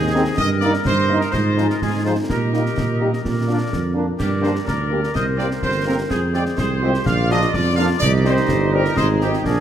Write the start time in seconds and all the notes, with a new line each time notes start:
Already playing: D#2 G#4 C5 D#5
0.14 D#3 C4 D#4 G#4
0.37 G2 A#4 D#5, concert bass drum, snare, crash
0.61 D#3 A#3 D#4 A#4 D5, snare
0.74 snare
0.85 G2 C5, concert bass drum, snare
1.09 D#3 A#3 D#4 A#4
1.21 A#4, snare
1.32 G#2 F4 C5, concert bass drum, snare
1.57 F3 D#4 G#4, snare
1.70 A#4, snare
1.81 G#2 G#4, concert bass drum, snare
2.05 F3 D#4 G#4 C5
2.29 A#2 G4 A#4 D#5, concert bass drum, snare
2.52 G3 A#3 D#4 G4, snare
2.66 snare
2.76 A#2, concert bass drum, snare
3.00 G3 A#3 D#4 G4
3.13 snare
3.24 A#2 A#4 D5, concert bass drum, snare
3.48 A#3 D4 F4
3.72 F2, concert bass drum, snare
3.94 A#3 D4 F4
4.18 G2 G4 A#4 D5, concert bass drum, snare, crash
4.42 A#3 D4 G4 C5, snare
4.56 snare
4.66 D2 A#4 D5, concert bass drum, snare
4.90 A#3 D4 G4
5.04 snare
5.13 C2 A#4 C5 D#5, concert bass drum, snare
5.37 A#3 C4 G4 D5, snare
5.51 snare
5.62 G1 A#4 C5, concert bass drum, snare
5.85 A#3 C4 G4 A#4
6.10 F2 G#4 C5, concert bass drum, snare
6.33 G#3 C4 F4 D5, snare
6.46 snare
6.57 C2 G#4 C5, concert bass drum, snare
6.82 G#3 C4 F4 G4
6.94 snare
7.06 A#1 F4 D5 F5, concert bass drum, snare
7.30 F3 A#3 D4 F4 D#5, snare
7.42 snare
7.53 F2 F4 D5, concert bass drum, snare
7.76 F3 A#3 D4 F4 F5
7.99 C2 G3 D#4 G4 D5 D#5, concert bass drum, snare, crash
8.24 G3 C4 D#4 C5, snare
8.37 snare
8.49 G1, concert bass drum, snare
8.72 G3 C4 D#4 A#4
8.85 snare
8.96 G#1 G#3 D#4 G#4 C5 D#5, concert bass drum, snare
9.20 G#3 C4 D#4 G4, snare
9.34 snare
9.43 A#1 A#3 D4 G#4 A#4 D5, concert bass drum, snare